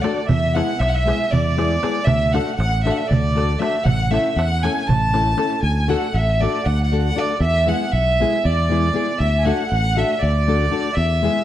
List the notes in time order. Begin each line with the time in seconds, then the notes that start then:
0.02 A3 D4 F#4 A4 D5, darbuka tek
0.26 E2 E5, darbuka dum
0.53 G#3 B3 E4 G#4 F#5, darbuka tek
0.78 B1 E5, darbuka tek
0.88 F#5
0.94 E5
1.06 G#3 B3 E4 G#4, darbuka tek
1.20 darbuka tek
1.31 E2 D5, darbuka dum
1.57 G#3 B3 E4 G#4, darbuka tek
1.70 darbuka tek
1.82 G#3 B3 E4 G#4, darbuka tek
2.04 D2 E5, darbuka dum
2.31 A3 D4 F#4 F#5, darbuka tek
2.35 A4
2.55 A1 F#5
2.60 darbuka tek
2.83 A3 D4 F#4 A4 E5, darbuka tek
2.91 F#5
2.96 E5, darbuka tek
3.08 D2 D5
3.12 darbuka dum
3.35 A3 D4 F#4 A4, darbuka tek
3.50 darbuka tek
3.59 A3 D4 F#4 A4 E5, darbuka tek
3.84 A1 F#5, darbuka dum
4.01 darbuka tek
4.11 A3 C#4 E4 A4 E5, darbuka tek
4.26 darbuka tek
4.36 E2 F#5, darbuka tek
4.51 darbuka tek
4.62 A3 C#4 E4 A4 G#5, darbuka tek
4.77 darbuka tek
4.86 A1 A5, darbuka dum
5.02 darbuka tek
5.13 A3 C#4 E4 A4, darbuka tek
5.27 darbuka tek
5.37 A3 C#4 E4 A4, darbuka tek
5.51 darbuka tek
5.63 D2 G#5
5.88 A3 D4 F#4 A4 F#5
6.13 A1 E5
6.40 A3 D4 F#4 A4 D5
6.63 D2 F#5
6.83 F#5
6.92 A3 D4 F#4 A4
6.98 F#5
7.03 F#5
7.15 A3 D4 F#4 A4 D5
7.40 E2 E5
7.67 G#3 B3 E4 G#4 F#5
7.92 B1 E5
8.20 G#3 B3 E4 G#4
8.44 E2 D5
8.70 G#3 B3 E4 G#4
8.93 G#3 B3 E4 G#4
9.18 D2 E5
9.38 G#5
9.43 A3 D4 F#4 F#5 G#5
9.47 A4
9.68 F#5
9.72 A1
9.96 A3 D4 F#4 A4 E5
10.19 D2 D5
10.48 A3 D4 F#4 A4
10.71 A3 D4 F#4 A4
10.93 E2 E5
11.23 G#3 B3 E4 G#4